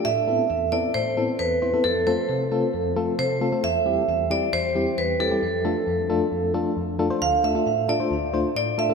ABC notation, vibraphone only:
X:1
M:4/4
L:1/8
Q:1/4=134
K:Ddor
V:1 name="Vibraphone"
e3 d c2 B2 | A c3 z2 c2 | e3 d c2 B A- | A6 z2 |
f e2 d3 d e |]